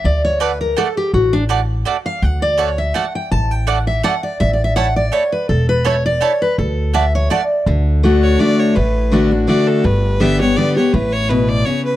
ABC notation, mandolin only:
X:1
M:3/4
L:1/16
Q:"Swing" 1/4=165
K:D
V:1 name="Mandolin"
z4 [A,Fda] z3 [A,Fda] z3 | z4 [A,Fda] z3 [A,Fda] z3 | z4 [A,Fda] z3 [A,Fda] z3 | z4 [A,Fda] z3 [A,Fda] z3 |
z4 [A,Eca] z3 [A,Eca] z3 | z4 [A,Eca] z3 [A,Eca] z3 | z4 [A,Fda] z3 [A,Fda] z3 | z12 |
z12 | z12 | z12 |]